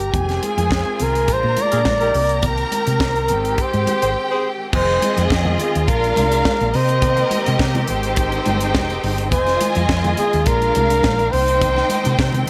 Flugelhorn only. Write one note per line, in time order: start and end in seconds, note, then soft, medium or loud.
0.00 0.46 G4 medium
0.45 1.04 G#4 medium
1.03 1.35 A#4 loud
1.33 1.63 C5 loud
1.62 2.46 D5 loud
2.47 3.63 A#4 loud
3.62 4.46 C5 loud
4.75 5.27 C5 loud
5.61 5.90 G#4 medium
5.89 6.77 A#4 loud
6.76 7.61 C5 loud
9.32 9.85 C5 loud
10.18 10.48 G#4 loud
10.47 11.33 A#4 loud
11.32 12.19 C5 loud